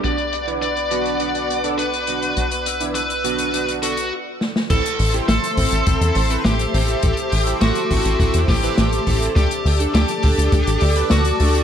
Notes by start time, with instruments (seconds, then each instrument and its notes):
Already playing: analog synth pad D5
0.04 analog synth bass B1, analog polysynth B3 D4 F#4, analog synth pad B4 F#5 D6, lead electric guitar D5, closed hi-hat
0.18 closed hi-hat
0.33 closed hi-hat
0.47 analog polysynth B3 D4 E4, closed hi-hat
0.62 lead electric guitar D5, closed hi-hat
0.77 closed hi-hat
0.91 analog polysynth B3 D4 F#4, closed hi-hat
1.06 closed hi-hat
1.20 analog polysynth B3 D4 F#4, closed hi-hat
1.35 closed hi-hat
1.50 closed hi-hat
1.64 analog polysynth B3 D4 A4, closed hi-hat
1.78 lead electric guitar B4, closed hi-hat
1.94 closed hi-hat
2.07 analog polysynth B3 D4 F#4, closed hi-hat
2.22 closed hi-hat
2.37 analog synth bass B1, analog polysynth B3 D4 F#4, analog synth pad E6, closed hi-hat
2.51 closed hi-hat
2.66 closed hi-hat
2.80 analog polysynth B3 D4 E4, closed hi-hat
2.95 lead electric guitar B4, closed hi-hat
3.10 closed hi-hat
3.24 analog polysynth B3 D4 F#4, closed hi-hat
3.38 closed hi-hat
3.53 analog polysynth B3 D4 F#4, closed hi-hat
3.69 closed hi-hat
3.82 analog polysynth B3 D4 A4, lead electric guitar F#4, closed hi-hat
3.97 closed hi-hat
4.41 snare
4.56 snare
4.70 analog synth bass A1, analog polysynth C4 E4 A4, analog synth pad A4 C5 E5 C6, lead electric guitar A4, kick, closed hi-hat, crash
4.86 closed hi-hat
4.99 analog synth bass A1, open hi-hat
5.14 analog polysynth C4 E4 G4, closed hi-hat
5.28 analog synth bass A1, lead electric guitar A4, snare, closed hi-hat
5.44 closed hi-hat
5.57 analog synth bass A1, analog polysynth C4 E4 A4, kick, open hi-hat
5.72 analog synth bass A1, closed hi-hat
5.86 analog synth bass A1, analog polysynth C4 E4 A4, kick, closed hi-hat
6.01 analog synth bass E2, closed hi-hat
6.15 analog synth bass A1, open hi-hat
6.30 analog polysynth C4 E4 B4, closed hi-hat
6.45 analog synth bass A1, lead electric guitar G4, snare, closed hi-hat
6.59 closed hi-hat
6.74 analog synth bass A1, analog polysynth C4 E4 A4, open hi-hat
6.88 closed hi-hat
7.03 analog synth bass A1, analog polysynth C4 E4 A4, analog synth pad D6, kick, closed hi-hat
7.17 closed hi-hat
7.32 analog synth bass A1, open hi-hat
7.47 analog polysynth C4 E4 G4, closed hi-hat
7.61 analog synth bass A1, lead electric guitar F#4, snare, closed hi-hat
7.75 closed hi-hat
7.90 analog synth bass A1, analog polysynth C4 E4 A4, kick, open hi-hat
8.05 analog synth bass A1, closed hi-hat
8.20 analog synth bass A1, analog polysynth C4 E4 A4, kick, closed hi-hat
8.34 analog synth bass E2, closed hi-hat
8.48 analog synth bass A1, lead electric guitar G4, kick, snare, open hi-hat
8.63 analog polysynth C4 E4 B4, closed hi-hat
8.78 analog synth bass A1, snare, closed hi-hat
8.93 closed hi-hat
9.07 analog synth bass A1, analog polysynth C4 E4 A4, kick, open hi-hat
9.22 closed hi-hat
9.36 analog synth bass D2, analog polysynth D4 G4 A4, lead electric guitar G4, analog synth pad D5 A5 D6, kick, closed hi-hat
9.51 closed hi-hat
9.65 analog synth bass D2, open hi-hat
9.80 analog polysynth D4 G4 A4, closed hi-hat
9.94 analog synth bass D2, lead electric guitar G4, snare, closed hi-hat
10.08 closed hi-hat
10.23 analog synth bass D2, analog polysynth D4 G4 A4, kick, open hi-hat
10.38 analog synth bass D2, closed hi-hat
10.52 analog synth bass D2, analog polysynth D4 G4 A4, kick, closed hi-hat
10.67 analog synth bass A1, closed hi-hat
10.81 analog synth bass D2, open hi-hat
10.96 analog polysynth D4 G4 B4, closed hi-hat
11.10 analog synth bass D2, lead electric guitar F#4, snare, closed hi-hat
11.25 closed hi-hat
11.40 analog synth bass D2, analog polysynth D4 G4 A4, open hi-hat
11.55 closed hi-hat